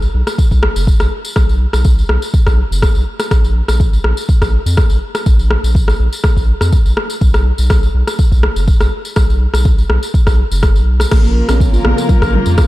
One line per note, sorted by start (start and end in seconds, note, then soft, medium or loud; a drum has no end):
0.02 tambourine soft
0.14 0.23 B1 medium
0.27 cross-stick medium
0.27 tambourine medium
0.38 kick loud
0.38 tambourine medium
0.51 0.67 B1 medium
0.51 kick medium
0.51 tambourine soft
0.63 cross-stick loud
0.76 0.91 F#1 medium
0.76 tambourine medium
0.87 kick loud
0.87 tambourine medium
1.00 1.08 B1 medium
1.00 cross-stick medium
1.00 tambourine soft
1.25 tambourine medium
1.36 1.66 B1 medium
1.36 kick loud
1.36 cross-stick medium
1.49 tambourine soft
1.73 2.03 B1 medium
1.73 cross-stick medium
1.73 tambourine medium
1.84 kick loud
1.84 tambourine medium
1.99 tambourine soft
2.09 2.18 B1 medium
2.09 cross-stick medium
2.22 tambourine medium
2.34 kick loud
2.34 tambourine medium
2.47 2.62 B1 loud
2.47 kick medium
2.47 cross-stick medium
2.47 tambourine soft
2.71 2.87 F#1 medium
2.71 tambourine medium
2.82 kick loud
2.82 cross-stick medium
2.82 tambourine medium
2.95 3.03 B1 loud
2.95 tambourine soft
3.19 cross-stick medium
3.19 tambourine medium
3.31 3.61 A#1 medium
3.31 kick loud
3.31 cross-stick medium
3.31 tambourine medium
3.44 tambourine soft
3.68 3.98 A#1 medium
3.68 cross-stick medium
3.68 tambourine medium
3.80 kick loud
3.80 tambourine medium
3.93 tambourine soft
4.04 4.13 A#1 medium
4.04 cross-stick medium
4.17 tambourine medium
4.29 kick loud
4.29 tambourine medium
4.42 4.57 A#1 loud
4.42 kick medium
4.42 cross-stick medium
4.42 tambourine soft
4.66 4.82 F2 medium
4.66 tambourine medium
4.77 kick loud
4.77 cross-stick medium
4.77 tambourine medium
4.90 4.98 A#1 loud
4.90 tambourine soft
5.15 cross-stick medium
5.15 tambourine medium
5.26 5.56 A#1 loud
5.26 kick loud
5.26 tambourine medium
5.39 tambourine soft
5.51 cross-stick medium
5.64 5.93 A#1 medium
5.64 tambourine medium
5.75 kick loud
5.75 tambourine medium
5.88 cross-stick medium
5.88 tambourine soft
6.00 6.08 A#1 medium
6.13 tambourine medium
6.24 kick loud
6.24 cross-stick medium
6.37 6.52 A#1 loud
6.37 kick medium
6.37 tambourine soft
6.61 6.77 F2 medium
6.61 cross-stick medium
6.61 tambourine medium
6.72 kick loud
6.72 tambourine medium
6.86 6.93 A#1 loud
6.86 tambourine soft
6.97 cross-stick medium
7.10 tambourine medium
7.21 7.52 B1 loud
7.21 kick loud
7.21 tambourine medium
7.34 cross-stick medium
7.34 tambourine soft
7.58 7.88 B1 medium
7.58 tambourine medium
7.70 kick loud
7.70 cross-stick medium
7.70 tambourine medium
7.83 tambourine soft
7.94 8.03 B1 medium
8.07 cross-stick medium
8.07 tambourine medium
8.19 kick loud
8.19 tambourine medium
8.32 8.47 B1 loud
8.32 kick medium
8.32 tambourine soft
8.43 cross-stick medium
8.56 8.72 F#1 medium
8.56 tambourine medium
8.68 kick loud
8.68 tambourine medium
8.81 8.88 B1 loud
8.81 cross-stick medium
8.81 tambourine soft
9.05 tambourine medium
9.16 9.47 B1 loud
9.16 kick loud
9.16 cross-stick medium
9.16 tambourine medium
9.30 tambourine soft
9.54 9.83 B1 medium
9.54 cross-stick medium
9.54 tambourine medium
9.65 kick loud
9.65 tambourine medium
9.78 tambourine soft
9.90 9.98 B1 medium
9.90 cross-stick medium
10.03 tambourine medium
10.14 kick loud
10.14 tambourine medium
10.27 10.43 B1 loud
10.27 kick medium
10.27 cross-stick medium
10.27 tambourine soft
10.51 10.77 F#1 medium
10.51 tambourine medium
10.63 kick loud
10.63 cross-stick medium
10.63 tambourine medium
10.76 11.05 B1 medium
10.76 tambourine soft
11.00 cross-stick medium
11.00 tambourine medium
11.11 11.42 A#1 loud
11.11 12.67 C#3 medium
11.11 12.67 F3 medium
11.11 11.19 A#3 medium
11.11 12.67 A#3 medium
11.11 12.67 F4 medium
11.11 12.67 A#4 medium
11.11 kick loud
11.11 cross-stick medium
11.11 crash medium
11.11 tambourine medium
11.24 11.35 A#3 medium
11.24 tambourine soft
11.49 11.79 A#1 medium
11.49 11.60 C#4 medium
11.49 cross-stick medium
11.49 tambourine medium
11.49 high conga medium
11.60 kick loud
11.60 tambourine medium
11.73 11.80 F4 medium
11.73 tambourine soft
11.85 11.93 A#1 medium
11.85 11.96 A#3 loud
11.85 cross-stick medium
11.85 high conga medium
11.97 12.04 A#4 medium
11.97 tambourine medium
12.09 12.16 A#4 loud
12.09 kick loud
12.09 tambourine medium
12.09 low conga loud
12.22 12.38 A#1 loud
12.22 kick medium
12.22 cross-stick medium
12.22 tambourine soft
12.33 12.46 G#3 medium
12.33 low conga medium
12.46 12.62 F2 medium
12.46 tambourine medium
12.58 12.67 F4 medium
12.58 kick loud
12.58 cross-stick medium
12.58 tambourine medium